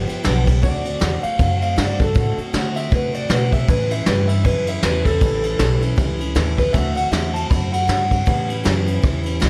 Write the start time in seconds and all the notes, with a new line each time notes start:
0.07 F3 G3 B3 G4, muted upright bass stroke, ride
0.23 B1 G2 D3 F3 G3 B3 G4, snare, ride
0.45 F3 G3 B3 G4, kick, ride
0.62 D2 D3 A3 C4 F#4 D5, kick, ride
0.84 A3 C4 F#4, ride
1.00 E2 D3 A3 C4 F#4, snare, ride
1.22 A3 C4 F#4 F5, muted upright bass stroke, ride
1.38 F#2 D3 A3 C4 F#4, kick, ride
1.61 A3 C4 F#4 F5, ride
1.76 G2 D3 A3 C4 F#4 D5, snare, ride
1.98 A3 C4 F#4 A4, kick, ride
2.14 A2 D3 A3 C4 F#4, kick, ride
2.37 A3 C4 F#4, muted upright bass stroke, ride
2.53 D3 A3 C4 F#4, snare, ride
2.75 A3 C4 F#4 E5, ride
2.91 C3 D3 A3 C4 F#4 B4, kick, ride
3.13 A3 C4 F#4 D5, ride
3.29 B2 D3 A3 C4 F#4 B4, snare, ride
3.52 A3 C4 F#4 E5, kick, ride
3.68 A2 E3 G3 C#4 E4 B4, kick, ride
3.90 G3 C#4 E4 E5, ride
4.06 G2 A2 E3 G3 C#4 E4 B4, snare, ride
4.27 G3 C#4 E4 E5, ride
4.44 F#2 E3 G3 C#4 E4 B4, kick, ride
4.67 G3 C#4 E4 E5, ride
4.83 E2 A2 E3 G3 C#4 E4 B4, snare, ride
5.05 G3 C#4 E4 A4, kick, ride
5.21 A1 A2 E3 G3 C#4 E4, kick, ride
5.42 G3 C#4 E4, ride
5.59 B1 A2 E3 G3 C#4 E4, snare, ride
5.81 G3 C#4 E4, ride
5.96 C#2 E3 G3 C#4 E4, kick, ride
6.19 G3 C#4 E4, ride
6.35 D#2 A2 E3 G3 C#4 E4, snare, ride
6.57 G3 C#4 E4 B4, kick, ride
6.73 D2 D3 A3 C4 F#4 E5, kick, ride
6.95 A3 C4 F#4 F#5, ride
7.11 E2 D3 A3 C4 F#4 E5, snare, ride
7.34 A3 C4 F#4 A5, ride
7.50 F#2 D3 A3 C4 F#4 B5, kick, ride
7.72 A3 C4 F#4 F#5, ride
7.87 G2 D3 A3 C4 F#4, snare, ride
8.10 A3 C4 F#4, kick, ride
8.26 A2 E3 G3 C#4 E4, kick, ride
8.49 G3 C#4 E4, ride
8.64 F#2 A2 E3 G3 C#4 E4, snare, ride
8.86 G3 C#4 E4, ride
9.02 E2 E3 G3 C#4 E4, kick, ride
9.24 G3 C#4 E4, ride
9.40 C#2 A2 E3 G3 C#4 E4, snare, ride